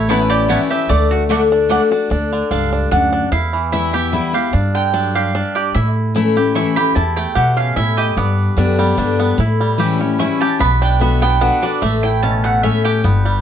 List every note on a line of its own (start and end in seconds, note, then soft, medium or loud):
0.00 0.56 A1 loud
0.00 0.46 A2 medium
0.00 0.46 E4 medium
0.09 0.47 E3 medium
0.09 0.49 A3 medium
0.09 0.19 B3 loud
0.09 0.48 B3 medium
0.09 0.48 C#4 medium
0.09 0.19 E4 loud
0.09 0.49 E4 medium
0.09 0.29 B4 medium
0.09 0.19 C#5 loud
0.09 0.19 A5 loud
0.30 0.70 G4 medium
0.30 0.49 D5 loud
0.48 0.69 E3 medium
0.48 0.89 A3 medium
0.48 0.59 B3 medium
0.48 0.70 B3 medium
0.48 0.70 C#4 loud
0.48 0.59 E4 medium
0.48 0.68 E4 loud
0.48 0.70 C#5 medium
0.48 0.59 C#5 medium
0.48 0.59 A5 loud
0.69 0.89 C#4 soft
0.69 0.89 E4 medium
0.69 0.90 G4 medium
0.69 0.89 E5 loud
0.89 1.77 D2 medium
0.89 1.28 D3 medium
0.89 1.47 A3 medium
0.89 1.10 D5 medium
1.11 1.23 F#4 medium
1.29 1.68 D3 medium
1.29 1.40 A3 medium
1.29 1.69 A3 medium
1.29 1.69 D4 loud
1.29 1.51 D4 medium
1.29 1.40 F#4 medium
1.29 1.69 F#4 loud
1.29 1.40 D5 loud
1.29 1.40 F#5 loud
1.52 1.70 D4 medium
1.69 1.90 D3 medium
1.69 1.80 A3 medium
1.69 1.91 A3 medium
1.69 1.91 D4 medium
1.69 1.90 D4 medium
1.69 1.80 F#4 loud
1.69 1.89 F#4 medium
1.69 1.80 D5 loud
1.69 1.80 F#5 loud
1.91 2.10 D4 medium
1.91 2.11 D4 soft
1.91 2.10 F#4 medium
2.10 2.40 D2 medium
2.10 2.88 D3 medium
2.10 2.50 D4 medium
2.33 2.88 D3 medium
2.51 2.86 C#2 medium
2.51 2.90 G2 medium
2.51 2.71 D4 medium
2.51 2.89 F5 medium
2.73 2.91 D4 medium
2.91 3.26 D2 medium
2.91 3.30 F#2 medium
2.91 3.11 D4 medium
2.91 3.29 F#5 loud
3.13 3.31 D4 medium
3.32 4.09 E2 medium
3.32 4.19 E2 medium
3.32 3.71 E4 medium
3.32 3.70 F5 medium
3.53 4.09 E3 medium
3.72 3.93 E3 medium
3.72 3.93 G3 medium
3.72 3.93 B3 loud
3.72 4.12 E4 medium
3.72 3.92 E4 loud
3.72 3.92 E5 medium
3.93 4.13 B3 soft
3.93 4.12 E4 medium
3.93 4.33 G4 medium
3.93 4.12 E5 medium
4.12 4.33 E3 medium
4.12 4.34 G3 medium
4.12 4.34 B3 medium
4.12 4.53 E4 medium
4.12 4.32 E4 loud
4.33 4.53 B3 medium
4.33 4.52 E4 medium
4.33 4.54 G4 medium
4.33 4.72 F5 medium
4.53 5.30 G2 medium
4.53 5.40 G2 medium
4.53 4.92 D4 medium
4.75 5.31 D3 medium
4.75 5.12 G5 loud
4.94 5.33 F#3 medium
4.94 5.34 D4 medium
5.15 5.55 G4 medium
5.15 5.53 F5 loud
5.35 5.73 G2 medium
5.35 5.75 D4 medium
5.55 5.75 G4 medium
5.55 5.74 D5 medium
5.74 6.52 A2 medium
5.74 6.62 A2 medium
5.74 6.15 E4 medium
5.74 5.87 E5 medium
6.15 6.35 E3 medium
6.15 6.36 A3 medium
6.15 6.36 C#4 loud
6.15 6.55 E4 medium
6.15 6.35 E4 loud
6.36 6.55 C#4 soft
6.36 6.55 E4 medium
6.36 6.76 G4 medium
6.55 6.76 E3 medium
6.55 6.76 A3 medium
6.55 6.76 C#4 medium
6.55 6.95 E4 medium
6.55 6.75 E4 loud
6.55 6.76 C#6 loud
6.76 6.96 C#4 soft
6.76 6.95 E4 medium
6.76 7.33 G4 medium
6.76 6.95 B5 loud
6.95 7.73 E2 medium
6.95 7.25 E2 medium
6.95 7.53 E4 medium
6.95 7.16 A5 medium
7.16 7.73 A3 medium
7.16 7.35 G5 medium
7.35 7.71 B2 medium
7.35 7.75 B2 medium
7.35 7.93 G4 medium
7.35 7.57 F#5 medium
7.57 8.13 C#4 medium
7.57 7.76 F5 medium
7.76 8.11 A2 medium
7.76 8.15 A2 medium
7.76 8.17 E4 medium
7.76 7.97 E5 medium
7.97 8.17 G4 medium
7.97 8.16 D#5 loud
8.17 8.46 G2 medium
8.17 8.95 G2 medium
8.17 8.75 B3 medium
8.17 9.35 D5 medium
8.57 8.92 F#2 medium
8.57 8.78 D3 medium
8.57 8.78 G3 medium
8.57 8.79 B3 medium
8.57 8.97 D4 medium
8.57 8.77 G4 loud
8.79 9.35 G3 medium
8.79 8.97 B3 medium
8.79 8.97 G4 medium
8.97 9.33 G2 medium
8.97 9.18 D3 medium
8.97 9.19 G3 medium
8.97 9.19 B3 loud
8.97 9.39 D4 medium
8.97 9.17 G4 medium
9.19 9.39 B3 medium
9.19 9.38 G4 medium
9.38 10.16 A2 medium
9.38 10.25 A2 medium
9.38 9.97 E4 medium
9.61 10.16 G3 medium
9.78 9.99 E3 medium
9.78 9.99 G3 medium
9.78 10.00 C#4 medium
9.78 9.98 E4 loud
9.78 10.37 G4 medium
9.99 10.57 C#4 medium
9.99 10.19 C#4 medium
9.99 10.19 E4 medium
10.19 10.40 E3 medium
10.19 10.40 G3 loud
10.19 10.41 C#4 loud
10.19 10.61 E4 medium
10.19 10.39 E4 medium
10.19 10.40 C#6 loud
10.40 10.60 C#4 soft
10.40 10.59 E4 medium
10.40 10.61 G4 medium
10.40 10.60 A5 loud
10.59 11.48 B1 loud
10.59 11.37 B2 medium
10.59 11.00 B3 medium
10.59 10.81 B5 loud
10.82 11.38 D4 medium
10.82 11.01 G5 medium
11.00 11.21 D3 medium
11.00 11.21 B3 medium
11.00 11.21 D4 medium
11.00 11.20 F#4 medium
11.00 11.22 E5 medium
11.21 11.40 B3 medium
11.21 11.41 D4 medium
11.21 11.40 F#4 medium
11.21 11.41 G5 loud
11.41 11.62 D3 medium
11.41 11.82 B3 medium
11.41 11.62 B3 medium
11.41 11.62 D4 loud
11.41 11.61 F#4 loud
11.41 11.62 F#5 medium
11.62 11.82 D4 medium
11.62 11.81 F#4 medium
11.62 11.81 D5 loud
11.82 12.69 A1 medium
11.82 12.59 A2 medium
11.82 12.40 A3 medium
11.82 12.03 E5 medium
12.03 12.60 E4 medium
12.03 12.22 G5 medium
12.23 12.62 B2 medium
12.23 12.63 C#4 medium
12.23 12.43 A5 loud
12.44 13.00 A3 medium
12.44 12.63 F#5 loud
12.63 13.02 A2 medium
12.63 13.04 C#4 medium
12.63 12.84 E5 medium
12.85 13.04 G4 medium
12.85 13.41 G5 loud
13.04 13.41 G1 loud
13.04 13.41 G2 medium
13.04 13.41 B3 medium
13.25 13.41 G3 medium